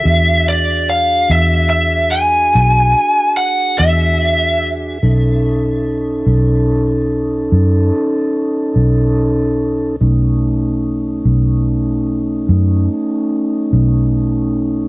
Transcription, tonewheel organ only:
0, 0, Header, 1, 2, 480
1, 0, Start_track
1, 0, Tempo, 828729
1, 36, Time_signature, 12, 3, 24, 8
1, 8621, End_track
2, 0, Start_track
2, 0, Title_t, "Tonewheel organ"
2, 0, Program_c, 0, 16
2, 17, Note_on_c, 0, 66, 58
2, 21, Note_on_c, 0, 62, 54
2, 25, Note_on_c, 0, 68, 52
2, 2883, Note_off_c, 0, 66, 0
2, 2885, Note_off_c, 0, 62, 0
2, 2887, Note_off_c, 0, 68, 0
2, 2912, Note_on_c, 0, 63, 61
2, 2912, Note_on_c, 0, 69, 54
2, 2916, Note_on_c, 0, 61, 56
2, 5769, Note_off_c, 0, 63, 0
2, 5769, Note_off_c, 0, 69, 0
2, 5771, Note_off_c, 0, 61, 0
2, 5796, Note_on_c, 0, 63, 55
2, 5800, Note_on_c, 0, 61, 59
2, 5802, Note_on_c, 0, 57, 60
2, 8621, Note_off_c, 0, 57, 0
2, 8621, Note_off_c, 0, 61, 0
2, 8621, Note_off_c, 0, 63, 0
2, 8621, End_track
0, 0, End_of_file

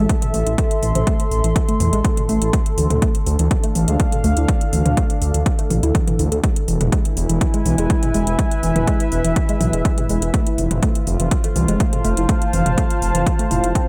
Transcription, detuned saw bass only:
0, 0, Header, 1, 2, 480
1, 0, Start_track
1, 0, Key_signature, 0, "minor"
1, 0, Tempo, 487805
1, 573, Time_signature, 4, 2, 24, 8
1, 13662, End_track
2, 0, Start_track
2, 0, Title_t, "Detuned saw bass"
2, 0, Program_c, 0, 39
2, 333, Note_on_c, 0, 33, 99
2, 431, Note_off_c, 0, 33, 0
2, 458, Note_on_c, 0, 33, 79
2, 548, Note_off_c, 0, 33, 0
2, 813, Note_on_c, 0, 33, 88
2, 911, Note_off_c, 0, 33, 0
2, 938, Note_on_c, 0, 33, 78
2, 1029, Note_off_c, 0, 33, 0
2, 1293, Note_on_c, 0, 33, 93
2, 1391, Note_off_c, 0, 33, 0
2, 1417, Note_on_c, 0, 33, 79
2, 1508, Note_off_c, 0, 33, 0
2, 1773, Note_on_c, 0, 40, 98
2, 1871, Note_off_c, 0, 40, 0
2, 1898, Note_on_c, 0, 33, 86
2, 1988, Note_off_c, 0, 33, 0
2, 2253, Note_on_c, 0, 33, 97
2, 2351, Note_off_c, 0, 33, 0
2, 2378, Note_on_c, 0, 33, 80
2, 2468, Note_off_c, 0, 33, 0
2, 2733, Note_on_c, 0, 38, 91
2, 2831, Note_off_c, 0, 38, 0
2, 2858, Note_on_c, 0, 38, 81
2, 2948, Note_off_c, 0, 38, 0
2, 3213, Note_on_c, 0, 38, 97
2, 3311, Note_off_c, 0, 38, 0
2, 3338, Note_on_c, 0, 38, 83
2, 3428, Note_off_c, 0, 38, 0
2, 3693, Note_on_c, 0, 33, 94
2, 3791, Note_off_c, 0, 33, 0
2, 3818, Note_on_c, 0, 38, 84
2, 3908, Note_off_c, 0, 38, 0
2, 4173, Note_on_c, 0, 38, 100
2, 4271, Note_off_c, 0, 38, 0
2, 4298, Note_on_c, 0, 38, 78
2, 4388, Note_off_c, 0, 38, 0
2, 4653, Note_on_c, 0, 38, 91
2, 4751, Note_off_c, 0, 38, 0
2, 4778, Note_on_c, 0, 38, 82
2, 4868, Note_off_c, 0, 38, 0
2, 5133, Note_on_c, 0, 38, 96
2, 5231, Note_off_c, 0, 38, 0
2, 5258, Note_on_c, 0, 38, 83
2, 5348, Note_off_c, 0, 38, 0
2, 5613, Note_on_c, 0, 33, 97
2, 5711, Note_off_c, 0, 33, 0
2, 5738, Note_on_c, 0, 38, 81
2, 5828, Note_off_c, 0, 38, 0
2, 6093, Note_on_c, 0, 38, 99
2, 6191, Note_off_c, 0, 38, 0
2, 6218, Note_on_c, 0, 38, 80
2, 6308, Note_off_c, 0, 38, 0
2, 6572, Note_on_c, 0, 28, 91
2, 6671, Note_off_c, 0, 28, 0
2, 6697, Note_on_c, 0, 28, 82
2, 6788, Note_off_c, 0, 28, 0
2, 7053, Note_on_c, 0, 28, 90
2, 7151, Note_off_c, 0, 28, 0
2, 7177, Note_on_c, 0, 28, 83
2, 7268, Note_off_c, 0, 28, 0
2, 7533, Note_on_c, 0, 35, 94
2, 7631, Note_off_c, 0, 35, 0
2, 7657, Note_on_c, 0, 28, 85
2, 7748, Note_off_c, 0, 28, 0
2, 8012, Note_on_c, 0, 28, 96
2, 8111, Note_off_c, 0, 28, 0
2, 8137, Note_on_c, 0, 28, 82
2, 8228, Note_off_c, 0, 28, 0
2, 8492, Note_on_c, 0, 28, 89
2, 8591, Note_off_c, 0, 28, 0
2, 8617, Note_on_c, 0, 28, 82
2, 8708, Note_off_c, 0, 28, 0
2, 8972, Note_on_c, 0, 28, 93
2, 9071, Note_off_c, 0, 28, 0
2, 9096, Note_on_c, 0, 28, 78
2, 9188, Note_off_c, 0, 28, 0
2, 9452, Note_on_c, 0, 35, 95
2, 9551, Note_off_c, 0, 35, 0
2, 9577, Note_on_c, 0, 28, 81
2, 9668, Note_off_c, 0, 28, 0
2, 9932, Note_on_c, 0, 28, 96
2, 10031, Note_off_c, 0, 28, 0
2, 10057, Note_on_c, 0, 28, 82
2, 10148, Note_off_c, 0, 28, 0
2, 10413, Note_on_c, 0, 29, 90
2, 10511, Note_off_c, 0, 29, 0
2, 10537, Note_on_c, 0, 29, 81
2, 10628, Note_off_c, 0, 29, 0
2, 10892, Note_on_c, 0, 29, 92
2, 10990, Note_off_c, 0, 29, 0
2, 11017, Note_on_c, 0, 29, 81
2, 11108, Note_off_c, 0, 29, 0
2, 11373, Note_on_c, 0, 36, 95
2, 11471, Note_off_c, 0, 36, 0
2, 11497, Note_on_c, 0, 29, 83
2, 11588, Note_off_c, 0, 29, 0
2, 11853, Note_on_c, 0, 29, 99
2, 11951, Note_off_c, 0, 29, 0
2, 11978, Note_on_c, 0, 29, 82
2, 12068, Note_off_c, 0, 29, 0
2, 12333, Note_on_c, 0, 29, 90
2, 12431, Note_off_c, 0, 29, 0
2, 12458, Note_on_c, 0, 29, 79
2, 12548, Note_off_c, 0, 29, 0
2, 12813, Note_on_c, 0, 29, 93
2, 12911, Note_off_c, 0, 29, 0
2, 12938, Note_on_c, 0, 29, 80
2, 13028, Note_off_c, 0, 29, 0
2, 13293, Note_on_c, 0, 29, 97
2, 13391, Note_off_c, 0, 29, 0
2, 13417, Note_on_c, 0, 29, 86
2, 13508, Note_off_c, 0, 29, 0
2, 13662, End_track
0, 0, End_of_file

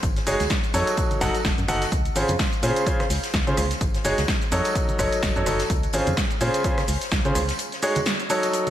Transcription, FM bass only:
0, 0, Header, 1, 2, 480
1, 0, Start_track
1, 0, Key_signature, -5, "major"
1, 0, Tempo, 472441
1, 30, Time_signature, 4, 2, 24, 8
1, 8839, End_track
2, 0, Start_track
2, 0, Title_t, "FM bass"
2, 0, Program_c, 0, 39
2, 31, Note_on_c, 0, 32, 102
2, 201, Note_off_c, 0, 32, 0
2, 271, Note_on_c, 0, 30, 81
2, 362, Note_off_c, 0, 30, 0
2, 407, Note_on_c, 0, 37, 80
2, 476, Note_off_c, 0, 37, 0
2, 750, Note_on_c, 0, 41, 84
2, 841, Note_off_c, 0, 41, 0
2, 1230, Note_on_c, 0, 30, 83
2, 1321, Note_off_c, 0, 30, 0
2, 1471, Note_on_c, 0, 30, 96
2, 1561, Note_off_c, 0, 30, 0
2, 1607, Note_on_c, 0, 42, 96
2, 1676, Note_off_c, 0, 42, 0
2, 1710, Note_on_c, 0, 30, 93
2, 1881, Note_off_c, 0, 30, 0
2, 1951, Note_on_c, 0, 37, 99
2, 2121, Note_off_c, 0, 37, 0
2, 2191, Note_on_c, 0, 32, 83
2, 2282, Note_off_c, 0, 32, 0
2, 2327, Note_on_c, 0, 41, 77
2, 2396, Note_off_c, 0, 41, 0
2, 2671, Note_on_c, 0, 46, 82
2, 2761, Note_off_c, 0, 46, 0
2, 3151, Note_on_c, 0, 37, 84
2, 3242, Note_off_c, 0, 37, 0
2, 3391, Note_on_c, 0, 37, 101
2, 3481, Note_off_c, 0, 37, 0
2, 3528, Note_on_c, 0, 49, 98
2, 3597, Note_off_c, 0, 49, 0
2, 3631, Note_on_c, 0, 37, 95
2, 3802, Note_off_c, 0, 37, 0
2, 3870, Note_on_c, 0, 32, 95
2, 4041, Note_off_c, 0, 32, 0
2, 4112, Note_on_c, 0, 30, 86
2, 4202, Note_off_c, 0, 30, 0
2, 4248, Note_on_c, 0, 37, 82
2, 4317, Note_off_c, 0, 37, 0
2, 4591, Note_on_c, 0, 41, 82
2, 4681, Note_off_c, 0, 41, 0
2, 5070, Note_on_c, 0, 30, 84
2, 5161, Note_off_c, 0, 30, 0
2, 5310, Note_on_c, 0, 30, 97
2, 5401, Note_off_c, 0, 30, 0
2, 5447, Note_on_c, 0, 42, 92
2, 5516, Note_off_c, 0, 42, 0
2, 5551, Note_on_c, 0, 30, 97
2, 5722, Note_off_c, 0, 30, 0
2, 5790, Note_on_c, 0, 37, 99
2, 5961, Note_off_c, 0, 37, 0
2, 6030, Note_on_c, 0, 32, 81
2, 6121, Note_off_c, 0, 32, 0
2, 6167, Note_on_c, 0, 41, 83
2, 6236, Note_off_c, 0, 41, 0
2, 6511, Note_on_c, 0, 46, 83
2, 6602, Note_off_c, 0, 46, 0
2, 6991, Note_on_c, 0, 37, 84
2, 7082, Note_off_c, 0, 37, 0
2, 7231, Note_on_c, 0, 37, 95
2, 7321, Note_off_c, 0, 37, 0
2, 7367, Note_on_c, 0, 49, 93
2, 7436, Note_off_c, 0, 49, 0
2, 7471, Note_on_c, 0, 37, 94
2, 7642, Note_off_c, 0, 37, 0
2, 8839, End_track
0, 0, End_of_file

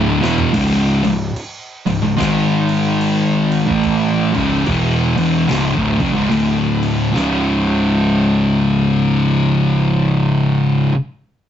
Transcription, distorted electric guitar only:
0, 0, Header, 1, 2, 480
1, 0, Start_track
1, 0, Key_signature, 4, "minor"
1, 0, Tempo, 825309
1, 315, Time_signature, 4, 2, 24, 8
1, 6683, End_track
2, 0, Start_track
2, 0, Title_t, "Distorted electric guitar"
2, 0, Program_c, 0, 30
2, 0, Note_on_c, 0, 38, 100
2, 0, Note_on_c, 0, 45, 91
2, 0, Note_on_c, 0, 50, 102
2, 120, Note_off_c, 0, 38, 0
2, 121, Note_off_c, 0, 45, 0
2, 123, Note_off_c, 0, 50, 0
2, 125, Note_on_c, 0, 40, 95
2, 129, Note_on_c, 0, 47, 102
2, 131, Note_on_c, 0, 52, 114
2, 306, Note_off_c, 0, 40, 0
2, 306, Note_off_c, 0, 47, 0
2, 308, Note_on_c, 0, 37, 106
2, 308, Note_on_c, 0, 44, 92
2, 309, Note_off_c, 0, 52, 0
2, 312, Note_on_c, 0, 49, 120
2, 596, Note_off_c, 0, 37, 0
2, 596, Note_off_c, 0, 44, 0
2, 600, Note_off_c, 0, 49, 0
2, 603, Note_on_c, 0, 37, 67
2, 603, Note_on_c, 0, 44, 68
2, 754, Note_off_c, 0, 37, 0
2, 754, Note_off_c, 0, 44, 0
2, 1084, Note_on_c, 0, 37, 58
2, 1084, Note_on_c, 0, 44, 80
2, 1167, Note_off_c, 0, 37, 0
2, 1169, Note_off_c, 0, 44, 0
2, 1174, Note_on_c, 0, 37, 59
2, 1176, Note_on_c, 0, 44, 61
2, 1255, Note_off_c, 0, 44, 0
2, 1260, Note_off_c, 0, 37, 0
2, 1262, Note_on_c, 0, 44, 92
2, 1265, Note_on_c, 0, 51, 100
2, 1269, Note_on_c, 0, 56, 99
2, 2130, Note_off_c, 0, 44, 0
2, 2131, Note_off_c, 0, 51, 0
2, 2133, Note_off_c, 0, 56, 0
2, 2134, Note_on_c, 0, 45, 90
2, 2139, Note_on_c, 0, 52, 83
2, 2142, Note_on_c, 0, 57, 93
2, 2516, Note_off_c, 0, 45, 0
2, 2519, Note_off_c, 0, 52, 0
2, 2519, Note_on_c, 0, 37, 100
2, 2521, Note_off_c, 0, 57, 0
2, 2522, Note_on_c, 0, 44, 88
2, 2525, Note_on_c, 0, 49, 96
2, 2703, Note_off_c, 0, 37, 0
2, 2705, Note_off_c, 0, 44, 0
2, 2706, Note_off_c, 0, 49, 0
2, 2711, Note_on_c, 0, 47, 109
2, 2712, Note_on_c, 0, 40, 93
2, 2714, Note_on_c, 0, 52, 97
2, 2998, Note_off_c, 0, 40, 0
2, 3000, Note_off_c, 0, 47, 0
2, 3001, Note_off_c, 0, 52, 0
2, 3005, Note_on_c, 0, 40, 93
2, 3007, Note_on_c, 0, 47, 92
2, 3009, Note_on_c, 0, 52, 95
2, 3186, Note_off_c, 0, 40, 0
2, 3187, Note_off_c, 0, 47, 0
2, 3188, Note_off_c, 0, 52, 0
2, 3190, Note_on_c, 0, 37, 94
2, 3194, Note_on_c, 0, 44, 99
2, 3331, Note_off_c, 0, 37, 0
2, 3333, Note_off_c, 0, 44, 0
2, 3338, Note_on_c, 0, 38, 79
2, 3345, Note_on_c, 0, 45, 82
2, 3479, Note_off_c, 0, 38, 0
2, 3483, Note_off_c, 0, 45, 0
2, 3488, Note_on_c, 0, 42, 75
2, 3491, Note_on_c, 0, 49, 90
2, 3570, Note_off_c, 0, 42, 0
2, 3572, Note_on_c, 0, 37, 87
2, 3573, Note_off_c, 0, 49, 0
2, 3575, Note_on_c, 0, 44, 114
2, 3664, Note_off_c, 0, 37, 0
2, 3666, Note_off_c, 0, 44, 0
2, 3666, Note_on_c, 0, 38, 87
2, 3669, Note_on_c, 0, 45, 92
2, 3670, Note_on_c, 0, 50, 95
2, 4137, Note_off_c, 0, 38, 0
2, 4139, Note_on_c, 0, 37, 102
2, 4147, Note_off_c, 0, 45, 0
2, 4147, Note_off_c, 0, 50, 0
2, 4152, Note_on_c, 0, 44, 107
2, 4163, Note_on_c, 0, 49, 108
2, 6344, Note_off_c, 0, 37, 0
2, 6357, Note_off_c, 0, 44, 0
2, 6367, Note_off_c, 0, 49, 0
2, 6683, End_track
0, 0, End_of_file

